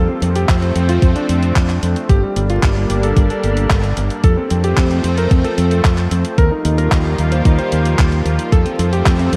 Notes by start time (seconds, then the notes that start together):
Already playing: F3 A3 C4
0.09 C4
0.22 F2 C4, closed hi-hat
0.35 G4, closed hi-hat
0.49 F2 C4, kick, clap, closed hi-hat
0.62 C4, closed hi-hat
0.76 F2 C4, closed hi-hat
0.89 F4, closed hi-hat
1.02 F2 C4, kick, closed hi-hat
1.16 D4, closed hi-hat
1.29 F2, closed hi-hat
1.43 closed hi-hat
1.56 F2, kick, clap, closed hi-hat
1.69 clap, closed hi-hat
1.83 F2, closed hi-hat
1.96 closed hi-hat
2.09 G1 G3 A#3 D4 G4, kick, closed hi-hat
2.23 G3
2.36 G1 G3, closed hi-hat
2.50 F4, closed hi-hat
2.63 G1 G3, kick, clap, closed hi-hat
2.77 G3
2.90 G1 G3, closed hi-hat
3.03 A4, closed hi-hat
3.17 G1 G3, kick, closed hi-hat
3.30 A4, closed hi-hat
3.43 G1, closed hi-hat
3.57 closed hi-hat
3.70 G1, kick, clap, closed hi-hat
3.84 closed hi-hat
3.97 G1, closed hi-hat
4.10 closed hi-hat
4.24 F2 F3 A3 C4 A4, kick, closed hi-hat
4.37 C4
4.50 F2 C4, closed hi-hat
4.64 G4, closed hi-hat
4.77 F2 C4, kick, clap, closed hi-hat
4.91 C4, closed hi-hat
5.04 F2 C4, closed hi-hat
5.18 A#4, closed hi-hat
5.31 F2 C4, kick, closed hi-hat
5.44 A4, closed hi-hat
5.58 F2, closed hi-hat
5.71 closed hi-hat
5.84 F2, kick, clap, closed hi-hat
5.98 clap, closed hi-hat
6.11 F2, closed hi-hat
6.25 closed hi-hat
6.38 D#2 D#3 F3 G3 A#3 F4 A#4, kick, closed hi-hat
6.52 D#4
6.65 D#2 D#4, closed hi-hat
6.78 A#4, closed hi-hat
6.92 D#2 D#4, kick, clap, closed hi-hat
7.05 D#4
7.18 D#2 D#4, closed hi-hat
7.32 C5, closed hi-hat
7.45 D#2 D#4, kick, closed hi-hat
7.58 C5, closed hi-hat
7.72 D#2, closed hi-hat
7.85 closed hi-hat
7.99 D#2, kick, clap, closed hi-hat
8.12 closed hi-hat
8.25 D#2, closed hi-hat
8.39 closed hi-hat
8.52 F2 A3 C4 A4, kick, closed hi-hat
8.66 C4, closed hi-hat
8.79 F2 C4, closed hi-hat
8.93 G4, closed hi-hat
9.06 F2 C4, kick, clap, closed hi-hat
9.19 C4, closed hi-hat
9.33 F2 C4, closed hi-hat